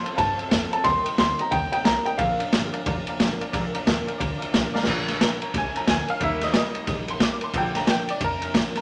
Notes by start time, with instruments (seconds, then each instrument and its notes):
Already playing: upright piano C6
0.04 steel-string acoustic guitar A4, honky-tonk piano C5 F5 A5, muted upright bass stroke, ride
0.08 steel-string acoustic guitar C4 F4
0.15 upright bass G2, steel-string acoustic guitar F3, honky-tonk piano C5 F5 A5, upright piano A5, kick, snare, ride
0.19 steel-string acoustic guitar C4 F4 A4
0.36 steel-string acoustic guitar A4, honky-tonk piano C5 F5 A5, muted upright bass stroke, ride
0.41 steel-string acoustic guitar C4 F4
0.49 upright bass F2, steel-string acoustic guitar F3 C4, honky-tonk piano C5 F5 A5, kick, snare, ride
0.53 steel-string acoustic guitar F4 A4
0.70 steel-string acoustic guitar F4 A4, honky-tonk piano C5 F5 A5, upright piano A5, muted upright bass stroke, ride
0.76 steel-string acoustic guitar C4
0.84 upright bass D#2, steel-string acoustic guitar D#3 G3 A#3 D#4 A#4, honky-tonk piano D#5 G5 A#5, upright piano C6, kick, snare, ride
1.04 steel-string acoustic guitar D#4 A#4, honky-tonk piano D#5 G5 A#5, muted upright bass stroke, ride
1.08 steel-string acoustic guitar A#3
1.17 upright bass D2, steel-string acoustic guitar D#3 G3 A#3 D#4 A#4, honky-tonk piano D#5 G5 A#5, upright piano C6, snare, ride
1.39 steel-string acoustic guitar A#3 D#4 A#4, honky-tonk piano D#5 G5 A#5, upright piano A#5, ride
1.51 upright bass D#2, steel-string acoustic guitar G3 A#3 D#4 A#4, honky-tonk piano D#5 G5 A#5, upright piano G5, kick, ride
1.72 steel-string acoustic guitar A#3 D#4 A#4, honky-tonk piano D#5 G5 A#5, upright piano G5, muted upright bass stroke, ride
1.85 upright bass C2, steel-string acoustic guitar D#3 G3 A#3 D#4 A#4, honky-tonk piano D#5 G5 A#5, upright piano A#5, kick, snare, ride
2.06 steel-string acoustic guitar D#4 A#4, honky-tonk piano D#5 G5 A#5, upright piano G5, muted upright bass stroke, ride
2.10 steel-string acoustic guitar A#3
2.18 upright bass A#1, steel-string acoustic guitar A#2 D3 F3 A#3 D4 A#4, honky-tonk piano D5 F5 A#5, upright piano F5, kick, ride
2.39 steel-string acoustic guitar A#3 D4 A#4, honky-tonk piano D5 F5 A#5, muted upright bass stroke, ride
2.43 steel-string acoustic guitar F3
2.52 upright bass G1, steel-string acoustic guitar A#2 D3 F3 A#3 D4 A#4, honky-tonk piano D5 F5 A#5, snare, ride
2.72 steel-string acoustic guitar A#3 D4 A#4, honky-tonk piano D5 F5 A#5, muted upright bass stroke, ride
2.77 steel-string acoustic guitar F3
2.86 upright bass F1, steel-string acoustic guitar F3 A#3 D4 A#4, honky-tonk piano D5 F5 A#5, kick, ride
3.07 steel-string acoustic guitar F3 A#3 D4 A#4, honky-tonk piano D5 F5 A#5, muted upright bass stroke, ride
3.19 upright bass G#1, steel-string acoustic guitar A#2 D3 F3 A#3 D4 A#4, honky-tonk piano D5 F5 A#5, kick, snare, ride
3.40 steel-string acoustic guitar F3 A#3 D4 A#4, honky-tonk piano D5 F5 A#5, muted upright bass stroke, ride
3.52 upright bass A#1, steel-string acoustic guitar A#2 D3 F3 A#3 D4 A#4, honky-tonk piano D5 F5 A#5, kick, snare, ride
3.74 steel-string acoustic guitar F3 A#3 D4 A#4, honky-tonk piano D5 F5 A#5, muted upright bass stroke, ride
3.86 upright bass D#2, steel-string acoustic guitar A#2 D3 F3 A#3 D4 A#4, honky-tonk piano D5 F5 A#5, snare, ride
4.07 steel-string acoustic guitar F3 A#3 D4 A#4, honky-tonk piano D5 F5 A#5, muted upright bass stroke, ride
4.18 upright bass D2, steel-string acoustic guitar F3 A#3 D4, honky-tonk piano D5 F5 A#5, kick, ride
4.23 steel-string acoustic guitar A#4
4.38 steel-string acoustic guitar A#4, honky-tonk piano D5 F5 A#5, muted upright bass stroke
4.42 steel-string acoustic guitar F3 A#3 D4, ride
4.52 upright bass C2, steel-string acoustic guitar A#2 D3 F3 A#3 D4 A#4, honky-tonk piano D5 F5 A#5, kick, snare, ride
4.73 steel-string acoustic guitar A#3 D4 A#4, honky-tonk piano D5 F5 A#5, muted upright bass stroke, snare
4.78 steel-string acoustic guitar F3
4.83 upright bass A#1, steel-string acoustic guitar A#2 D3 F3, honky-tonk piano D3, kick, snare, crash
4.88 honky-tonk piano F3 A#3, steel-string acoustic guitar A#3 D4 A#4
5.07 steel-string acoustic guitar F3 A#3 D4 A#4, snare, ride
5.19 steel-string acoustic guitar A#2 D3 F3 A#3 D4, honky-tonk piano A#5, snare, ride
5.41 steel-string acoustic guitar F3 A#3 D4 A#4, muted upright bass stroke, ride
5.53 upright bass C2, steel-string acoustic guitar F3 A#3 D4 A#4, kick, snare, ride
5.58 honky-tonk piano G#5
5.75 steel-string acoustic guitar F3 A#3 D4 A#4, honky-tonk piano A#5, muted upright bass stroke, ride
5.87 upright bass D2, steel-string acoustic guitar A#2 D3 F3 A#3 D4 A#4, honky-tonk piano G#5, kick, snare, ride
6.08 steel-string acoustic guitar F3 A#3 D4 A#4, honky-tonk piano F5, ride
6.20 upright bass D#2, steel-string acoustic guitar D#3 G3 A#3 D#4 A#4, honky-tonk piano D#3 G3 A#3 E5, kick, ride
6.41 steel-string acoustic guitar A#3 D#4 A#4, honky-tonk piano D#5, snare, ride
6.52 steel-string acoustic guitar D#3 G3 A#3 D#4 A#4, honky-tonk piano D5, snare, ride
6.57 honky-tonk piano D#5
6.75 steel-string acoustic guitar A#3 D#4 A#4, muted upright bass stroke, ride
6.87 upright bass A#1, steel-string acoustic guitar G3 A#3 D#4, kick, snare, ride
6.91 steel-string acoustic guitar A#4
7.08 steel-string acoustic guitar A#3 D#4 A#4, honky-tonk piano C6, ride
7.20 steel-string acoustic guitar D#3 G3 A#3 D#4 A#4, honky-tonk piano D6, kick, snare, ride
7.40 steel-string acoustic guitar A#3 D#4 A#4, honky-tonk piano C6, muted upright bass stroke, ride
7.54 upright bass A#1, steel-string acoustic guitar A#2 D3 F3 A#3 D4 A#4, honky-tonk piano D3 F3 A#3, kick, ride
7.58 honky-tonk piano G5
7.75 steel-string acoustic guitar F3 A#3 D4 A#4, honky-tonk piano A#5, snare, ride
7.87 steel-string acoustic guitar A#2 D3 F3 A#3 D4 A#4, honky-tonk piano G5, snare, ride
8.07 steel-string acoustic guitar A#3 D4 A#4, honky-tonk piano D5, muted upright bass stroke, ride
8.12 steel-string acoustic guitar F3
8.21 upright bass F2, steel-string acoustic guitar F3 A#3 D4 A#4, honky-tonk piano A#4, kick, ride
8.42 steel-string acoustic guitar A#3 D4 A#4, ride
8.46 steel-string acoustic guitar F3
8.54 steel-string acoustic guitar A#2 D3 F3 A#3 D4 A#4, kick, snare, ride
8.75 steel-string acoustic guitar D4 A#4, honky-tonk piano A#5, muted upright bass stroke, snare, ride